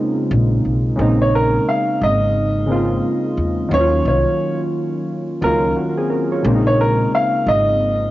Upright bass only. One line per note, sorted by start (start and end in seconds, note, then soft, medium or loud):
0.31 0.59 A#1 loud
0.65 0.93 B1 medium
0.99 1.56 A#1 loud
2.01 2.99 G#1 medium
3.37 3.66 E2 medium
3.71 4.00 D#2 loud
4.05 4.23 C2 medium
5.42 5.70 C#2 medium
6.44 7.01 A#1 loud
7.47 8.11 G#1 medium